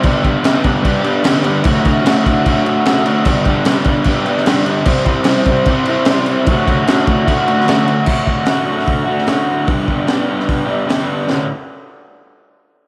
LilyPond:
<<
  \new Staff \with { instrumentName = "Overdriven electric guitar" } { \time 4/4 \key d \mixolydian \tempo 4 = 149 <g, d g b d' g'>8 <g b d' g'>8 <g, d g b d' g'>8 <g b d' g'>8 <g b d' g'>8 <g b d' g'>8 <g, d g b d' g'>8 <g b d' g'>8 | <d, a, d a fis'>8 <d a fis'>8 <d, a, d a fis'>8 <d a fis'>8 <a, d a fis'>8 <d a fis'>8 <d, a, d a fis'>8 <d a fis'>8 | <g, d g b d' g'>8 <g b d' g'>8 <g, d g b d' g'>8 <g b d' g'>8 <g b d' g'>8 <g b d' g'>8 <g, d g b d' g'>8 <g b d' g'>8 | <c g c' e' g' c''>8 <c' e' g' c''>8 <c g c' e' g' c''>8 <c' e' g' c''>8 <c' e' g' c''>8 <c' e' g' c''>8 <c g c' e' g' c''>8 <c' e' g' c''>8 |
<d, a, d a fis'>8 <d a fis'>8 <d, a, d a fis'>8 <d a fis'>8 <a, d a fis'>8 <d a fis'>8 <d, a, d a fis'>8 <d a fis'>8 | <d, a, d a fis'>8 <d a fis'>8 <a, d a fis'>8 <d a fis'>4 <d a fis'>8 <d, a, d a fis'>4 | <g, d g b d' g'>8 <g b d' g'>8 <g b d' g'>8 <g b d' g'>4 <g b d' g'>8 <g, d g b d' g'>4 | <d, a, d>8 r2. r8 | }
  \new DrumStaff \with { instrumentName = "Drums" } \drummode { \time 4/4 <cymc bd>8 <cymc bd>8 <cymc sn>8 <cymc bd>8 <cymc bd>8 cymc8 <cymc sn>8 cymc8 | <cymc bd>8 <cymc bd>8 <cymc sn>8 <cymc bd>8 <cymc bd>8 cymc8 <cymc sn>8 cymc8 | <cymc bd>8 <cymc bd>8 <cymc sn>8 <cymc bd>8 <cymc bd>8 cymc16 sn16 <cymc sn>8 cymc8 | <cymc bd>8 <cymc bd>8 <cymc sn>8 <cymc bd>8 <cymc bd>8 cymc8 <cymc sn>8 cymc8 |
<cymc bd>8 <cymc bd>8 <cymc sn>8 <cymc bd>8 <cymc bd>8 cymc16 sn16 <cymc sn>8 cymc8 | <cymc bd>8 bd8 <hho sn>8. sn16 <hho bd>8. sn16 <hho sn>4 | <hho bd>8 bd8 <hho sn>8. sn16 <hho bd>4 <hho sn>4 | sn4 r4 r4 r4 | }
>>